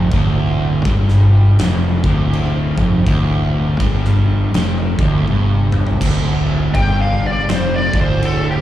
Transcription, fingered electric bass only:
0.12 D1
0.85 G1
1.60 F1
2.04 D1
2.77 F1
3.07 D1
3.80 G1
4.54 F1
4.99 D1
5.28 G1
6.01 D1
6.75 G1
7.50 F1
7.94 D1

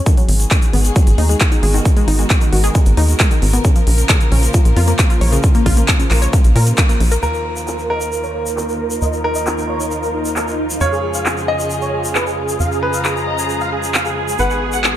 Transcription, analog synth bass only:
0.29 G#1
0.73 G#1
1.07 G#1
1.18 D#2
1.63 G#1
2.08 G#1
2.53 G#1
2.86 G#1
2.97 D#2
3.42 G#1
3.87 A#1
4.32 A#1
4.65 A#1
4.76 F2
5.21 A#1
5.66 A#1
6.11 A#1
6.44 A#1
6.56 A#2
7.00 A#1
7.23 D#2
9.02 D#2
10.81 F2
12.60 F2
14.39 G#1

